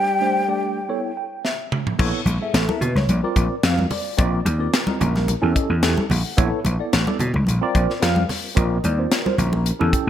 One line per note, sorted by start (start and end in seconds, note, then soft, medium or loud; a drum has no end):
0.00 1.18 G3 medium
0.00 1.17 G5 loud
0.20 0.41 A3 medium
0.20 0.42 D4 medium
0.20 0.42 G4 medium
0.20 0.42 C5 medium
0.48 0.79 A3 medium
0.48 0.79 D4 medium
0.48 0.79 G4 medium
0.48 0.80 D5 medium
0.89 1.10 B3 medium
0.89 1.10 E4 medium
0.89 1.10 A4 medium
0.89 1.11 C#5 medium
1.17 1.24 A4 soft
1.17 1.25 C#5 soft
1.17 1.43 G5 medium
1.45 1.95 E5 medium
1.45 snare medium
1.71 1.78 A4 soft
1.71 1.79 C#5 soft
1.71 mid tom medium
1.87 floor tom medium
1.99 2.10 A#1 loud
1.99 2.20 B3 loud
1.99 2.20 E4 loud
1.99 2.20 A4 loud
1.99 2.21 C#5 loud
1.99 kick loud
1.99 crash loud
2.25 2.37 A#1 medium
2.25 2.33 A4 soft
2.25 2.34 C#5 soft
2.25 closed hi-hat medium
2.25 high conga medium
2.41 2.61 B3 medium
2.41 2.61 E4 medium
2.41 2.54 G#4 medium
2.41 2.53 A4 medium
2.41 2.62 E5 medium
2.54 2.65 A1 medium
2.54 2.67 A4 medium
2.54 snare loud
2.54 closed hi-hat medium
2.68 2.78 B3 medium
2.68 2.78 E4 medium
2.68 2.78 A4 medium
2.68 2.82 A#4 medium
2.68 2.79 E5 medium
2.68 high conga medium
2.81 2.92 B2 medium
2.81 2.89 A4 soft
2.81 2.95 B4 medium
2.81 2.89 C#5 soft
2.81 closed hi-hat medium
2.81 low conga medium
2.95 3.05 C#2 medium
2.95 3.09 C#5 medium
2.95 snare soft
2.95 high conga medium
3.09 3.20 A#1 medium
3.09 3.23 D5 medium
3.09 closed hi-hat medium
3.09 high conga medium
3.23 3.54 C4 medium
3.23 3.54 F4 medium
3.23 3.54 A#4 medium
3.23 3.55 D5 medium
3.36 3.47 A#1 medium
3.36 kick medium
3.36 closed hi-hat medium
3.63 3.84 F2 medium
3.63 3.85 C4 medium
3.63 3.85 F4 medium
3.63 3.85 A#4 medium
3.63 3.85 F5 medium
3.63 snare loud
3.63 closed hi-hat medium
3.78 high conga medium
3.90 3.98 A#4 soft
3.90 3.98 C5 soft
3.90 4.17 D5 medium
3.90 open hi-hat medium
3.90 low conga medium
4.17 4.40 A#1 medium
4.17 4.39 C4 medium
4.17 4.39 F4 medium
4.17 4.39 A#4 medium
4.17 4.39 D5 loud
4.17 4.45 D#5 medium
4.17 kick loud
4.17 closed hi-hat medium
4.45 4.66 D#2 medium
4.45 4.52 A#4 soft
4.45 4.59 D5 medium
4.45 4.53 D#5 soft
4.45 closed hi-hat medium
4.45 high conga medium
4.59 4.80 C4 medium
4.59 4.80 F4 medium
4.59 4.73 A#4 medium
4.59 4.81 D5 medium
4.73 4.87 A#4 medium
4.73 snare loud
4.73 closed hi-hat medium
4.87 4.97 C4 medium
4.87 4.97 F4 medium
4.87 4.98 A#4 medium
4.87 4.98 D#5 medium
4.87 high conga medium
4.99 5.33 A#1 medium
4.99 5.33 C#4 medium
4.99 5.33 E4 medium
4.99 5.33 G4 medium
4.99 5.34 A#4 medium
4.99 closed hi-hat medium
4.99 low conga medium
5.16 snare soft
5.16 high conga medium
5.28 closed hi-hat medium
5.28 high conga medium
5.42 5.53 E2 medium
5.42 5.73 C#4 loud
5.42 5.73 E4 medium
5.42 5.73 G4 medium
5.42 5.73 A4 loud
5.55 5.81 D#5 medium
5.55 kick medium
5.55 closed hi-hat medium
5.70 5.80 E2 medium
5.82 5.94 E2 medium
5.82 6.04 C#4 medium
5.82 6.04 E4 medium
5.82 6.04 G4 medium
5.82 6.04 A4 medium
5.82 6.09 E5 medium
5.82 snare loud
5.82 closed hi-hat medium
5.97 muted slap bass stroke soft
5.97 high conga medium
6.10 6.22 A#1 loud
6.10 6.17 G4 soft
6.10 6.18 A4 soft
6.10 6.36 F#5 medium
6.10 open hi-hat medium
6.10 low conga medium
6.37 6.49 A#1 loud
6.37 6.58 B3 loud
6.37 6.58 E4 loud
6.37 6.59 A4 loud
6.37 6.59 C#5 loud
6.37 kick loud
6.37 closed hi-hat medium
6.65 6.76 A#1 medium
6.65 6.72 A4 soft
6.65 6.73 B4 soft
6.65 closed hi-hat medium
6.65 high conga medium
6.79 6.99 B3 medium
6.79 7.00 E4 medium
6.79 7.00 A4 medium
6.79 7.00 D5 medium
6.93 7.04 A1 medium
6.93 snare loud
6.93 closed hi-hat medium
7.07 7.16 B3 medium
7.07 7.17 E4 medium
7.07 7.17 A4 medium
7.07 7.17 D5 medium
7.07 high conga medium
7.19 7.31 B2 medium
7.19 7.27 A4 soft
7.19 7.28 C#5 soft
7.19 closed hi-hat medium
7.19 low conga medium
7.34 7.45 C#2 medium
7.34 high conga medium
7.47 7.59 A#1 medium
7.47 closed hi-hat medium
7.47 high conga medium
7.61 7.92 C4 loud
7.61 7.92 F4 loud
7.61 7.92 A#4 loud
7.61 7.93 D5 loud
7.75 7.86 A#1 medium
7.75 kick medium
7.75 closed hi-hat medium
7.90 snare soft
8.00 8.23 F2 medium
8.00 8.22 C4 medium
8.00 8.22 F4 medium
8.00 8.23 A#4 medium
8.00 8.23 F5 medium
8.00 snare loud
8.00 closed hi-hat medium
8.16 high conga medium
8.29 8.36 A#4 soft
8.29 8.36 D5 soft
8.29 snare soft
8.29 open hi-hat medium
8.29 low conga medium
8.55 8.77 A#1 medium
8.55 8.77 C4 medium
8.55 8.77 F4 medium
8.55 8.77 A#4 medium
8.55 8.77 D5 loud
8.55 8.84 D#5 loud
8.55 kick loud
8.55 closed hi-hat medium
8.83 9.05 D#2 loud
8.83 8.90 A#4 soft
8.83 8.91 C5 soft
8.83 9.11 D5 medium
8.83 closed hi-hat medium
8.83 high conga medium
8.98 9.18 C4 medium
8.98 9.18 F4 medium
8.98 9.11 A#4 medium
8.98 9.19 C5 medium
9.11 9.25 A#4 soft
9.11 snare loud
9.11 closed hi-hat medium
9.26 9.35 C4 medium
9.26 9.35 F4 medium
9.26 9.35 A#4 medium
9.26 9.36 C5 medium
9.26 high conga medium
9.37 9.70 A#1 loud
9.37 9.71 C#4 medium
9.37 9.71 E4 medium
9.37 9.71 G4 medium
9.37 9.71 A#4 medium
9.37 closed hi-hat medium
9.37 low conga medium
9.53 high conga medium
9.66 closed hi-hat medium
9.79 9.90 E2 medium
9.79 10.10 C#4 loud
9.79 10.10 E4 medium
9.79 10.10 G4 medium
9.79 10.10 A4 loud
9.79 low conga medium
9.93 10.10 G5 medium
9.93 muted slap bass stroke soft
9.93 kick medium
9.93 closed hi-hat medium